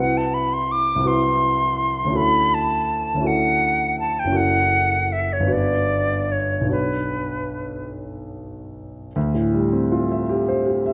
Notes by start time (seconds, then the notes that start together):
Already playing: C2 C4 E4 F#4 B4
0.00 F#5
0.17 A5
0.34 B5
0.53 C6
0.72 D6
0.96 C2 C4
1.01 E4 F#4
1.05 B4 C6
2.05 D2 C#4
2.10 E4 F#4
2.15 A4 B5
2.54 A5
3.14 D2 C#4
3.20 E4 F#4
3.25 A4 F#5
4.00 A5
4.19 G5
4.25 F#1 C#4
4.29 E4 F#4
4.35 A4 F#5
5.12 E5
5.33 C#5
5.40 G1 B3
5.45 D4 F#4
5.50 B4 D5
6.32 C#5
6.61 B1 B3
6.66 D4 F#4
6.71 B4 C#5
9.16 D2
9.34 A2
9.54 G3
9.73 C4
9.92 F4
10.12 E5
10.29 G4
10.48 C5
10.66 G4
10.86 E5